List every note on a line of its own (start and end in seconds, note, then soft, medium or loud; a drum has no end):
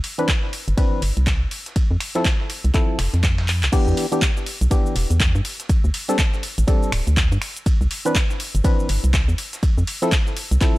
0.04 open hi-hat loud
0.04 ride medium
0.18 0.32 E3 medium
0.18 0.32 C4 medium
0.18 0.32 D4 medium
0.18 0.32 B4 medium
0.18 closed hi-hat medium
0.28 kick loud
0.28 snare loud
0.28 clap loud
0.28 closed hi-hat medium
0.28 ride medium
0.43 snare soft
0.53 open hi-hat loud
0.53 ride medium
0.68 0.74 G1 loud
0.68 closed hi-hat medium
0.77 1.02 E3 medium
0.77 1.02 C4 medium
0.77 1.02 D4 medium
0.77 1.02 B4 medium
0.77 kick loud
0.77 closed hi-hat medium
0.77 ride medium
1.02 1.11 G1 medium
1.02 open hi-hat loud
1.02 ride medium
1.17 1.46 C2 medium
1.17 closed hi-hat medium
1.27 kick loud
1.27 snare loud
1.27 clap loud
1.27 closed hi-hat medium
1.27 ride medium
1.51 open hi-hat loud
1.51 ride medium
1.66 snare soft
1.66 closed hi-hat medium
1.76 kick loud
1.76 closed hi-hat medium
1.76 ride medium
1.91 1.97 F2 loud
2.00 finger snap medium
2.00 open hi-hat loud
2.00 ride medium
2.15 2.28 F3 medium
2.15 2.28 C4 medium
2.15 2.29 E4 medium
2.15 2.29 A4 medium
2.15 snare soft
2.15 closed hi-hat medium
2.25 kick loud
2.25 snare loud
2.25 clap loud
2.25 closed hi-hat medium
2.25 ride medium
2.40 snare soft
2.50 open hi-hat loud
2.50 ride medium
2.64 2.71 C2 loud
2.64 closed hi-hat medium
2.74 2.98 F3 medium
2.74 2.98 C4 medium
2.74 2.99 E4 medium
2.74 2.99 A4 medium
2.74 kick loud
2.74 clap medium
2.74 closed hi-hat medium
2.74 ride medium
2.99 3.08 F1 medium
2.99 finger snap medium
2.99 snare loud
2.99 open hi-hat loud
2.99 ride medium
3.14 3.64 F2 medium
3.14 snare soft
3.14 closed hi-hat medium
3.23 kick loud
3.23 snare loud
3.23 clap loud
3.23 closed hi-hat medium
3.23 ride medium
3.38 snare loud
3.38 ride medium
3.48 snare soft
3.48 clap medium
3.48 open hi-hat loud
3.63 3.69 C2 medium
3.63 clap loud
3.63 closed hi-hat medium
3.63 ride medium
3.72 4.06 E3 loud
3.72 4.06 B3 loud
3.72 4.06 D4 medium
3.72 4.06 G4 loud
3.72 kick loud
3.72 closed hi-hat medium
3.72 crash loud
3.72 ride medium
3.72 shaker medium
3.87 3.94 E2 loud
3.87 shaker soft
3.97 open hi-hat loud
3.97 ride medium
4.12 4.25 E3 medium
4.12 4.25 B3 medium
4.12 4.25 D4 medium
4.12 4.25 G4 medium
4.12 closed hi-hat medium
4.12 shaker medium
4.22 kick loud
4.22 snare loud
4.22 clap loud
4.22 closed hi-hat medium
4.22 ride medium
4.22 shaker medium
4.37 snare soft
4.37 shaker soft
4.46 open hi-hat loud
4.46 ride medium
4.61 4.67 B1 loud
4.61 closed hi-hat medium
4.61 shaker medium
4.71 4.95 E3 medium
4.71 4.95 B3 medium
4.71 4.95 D4 medium
4.71 4.95 G4 medium
4.71 kick loud
4.71 closed hi-hat medium
4.71 ride medium
4.71 shaker medium
4.86 shaker soft
4.96 5.05 E1 medium
4.96 open hi-hat loud
4.96 ride medium
5.10 5.34 E2 medium
5.10 closed hi-hat medium
5.10 shaker medium
5.20 kick loud
5.20 snare loud
5.20 clap loud
5.20 closed hi-hat medium
5.20 ride medium
5.20 shaker medium
5.35 5.41 G2 medium
5.35 shaker soft
5.45 open hi-hat loud
5.45 ride medium
5.60 snare soft
5.60 closed hi-hat medium
5.60 shaker medium
5.69 kick loud
5.69 closed hi-hat medium
5.69 ride medium
5.69 shaker medium
5.84 5.90 D2 loud
5.84 shaker soft
5.94 open hi-hat loud
5.94 ride medium
6.08 6.22 G3 medium
6.08 6.22 C4 medium
6.08 6.22 D4 medium
6.08 6.22 A4 medium
6.08 snare soft
6.08 closed hi-hat medium
6.08 shaker medium
6.19 kick loud
6.19 snare loud
6.19 clap loud
6.19 closed hi-hat medium
6.19 ride medium
6.19 shaker medium
6.34 snare soft
6.34 shaker soft
6.43 open hi-hat loud
6.43 ride medium
6.58 6.64 A1 loud
6.58 closed hi-hat medium
6.58 shaker medium
6.67 6.92 G3 medium
6.67 6.92 C4 medium
6.67 6.92 D4 medium
6.67 6.92 A4 medium
6.67 kick loud
6.67 closed hi-hat medium
6.67 ride medium
6.67 shaker medium
6.83 shaker soft
6.92 7.02 D1 loud
6.92 finger snap medium
6.92 snare soft
6.92 open hi-hat loud
6.92 ride medium
7.07 7.31 D2 medium
7.07 closed hi-hat medium
7.07 shaker medium
7.17 kick loud
7.17 snare loud
7.17 clap loud
7.17 closed hi-hat medium
7.17 ride medium
7.17 shaker medium
7.32 7.38 G2 medium
7.32 ride soft
7.32 shaker soft
7.42 finger snap medium
7.42 open hi-hat loud
7.42 ride medium
7.56 closed hi-hat medium
7.56 shaker medium
7.66 kick loud
7.66 closed hi-hat medium
7.66 ride loud
7.66 shaker medium
7.81 7.87 C2 loud
7.81 shaker soft
7.91 open hi-hat loud
7.91 ride medium
8.05 8.18 E3 medium
8.05 8.19 C4 medium
8.05 8.19 D4 medium
8.05 8.19 B4 medium
8.05 closed hi-hat medium
8.05 shaker medium
8.15 kick loud
8.15 snare loud
8.15 clap loud
8.15 closed hi-hat medium
8.15 ride medium
8.15 shaker medium
8.30 snare medium
8.30 shaker soft
8.40 open hi-hat loud
8.40 ride medium
8.55 8.61 G1 loud
8.55 closed hi-hat medium
8.55 shaker medium
8.64 8.89 E3 medium
8.64 8.89 C4 medium
8.64 8.89 D4 medium
8.64 8.89 B4 medium
8.64 kick loud
8.64 closed hi-hat medium
8.64 ride medium
8.64 shaker medium
8.80 shaker soft
8.89 8.98 G1 medium
8.89 open hi-hat loud
8.89 ride medium
9.04 9.28 C2 loud
9.04 closed hi-hat soft
9.04 shaker medium
9.14 kick loud
9.14 snare loud
9.14 clap loud
9.14 closed hi-hat medium
9.14 ride medium
9.14 shaker medium
9.28 9.35 E2 medium
9.28 shaker soft
9.38 open hi-hat loud
9.38 ride medium
9.53 snare soft
9.53 closed hi-hat medium
9.53 shaker medium
9.63 kick loud
9.63 closed hi-hat medium
9.63 ride medium
9.63 shaker medium
9.78 9.84 F2 loud
9.78 shaker soft
9.87 open hi-hat loud
9.87 ride medium
10.02 10.15 F3 medium
10.02 10.15 C4 medium
10.02 10.16 E4 medium
10.02 10.16 A4 medium
10.02 snare soft
10.02 closed hi-hat soft
10.02 shaker medium
10.12 kick loud
10.12 snare loud
10.12 clap loud
10.12 closed hi-hat medium
10.12 ride medium
10.12 shaker medium
10.27 snare soft
10.27 shaker soft
10.37 open hi-hat loud
10.37 ride medium
10.51 10.58 C2 loud
10.51 closed hi-hat soft
10.51 shaker medium
10.61 10.78 F3 medium
10.61 10.78 C4 medium
10.61 10.78 E4 medium
10.61 10.78 A4 medium
10.61 kick loud
10.61 clap medium
10.61 closed hi-hat medium
10.61 ride medium
10.61 shaker medium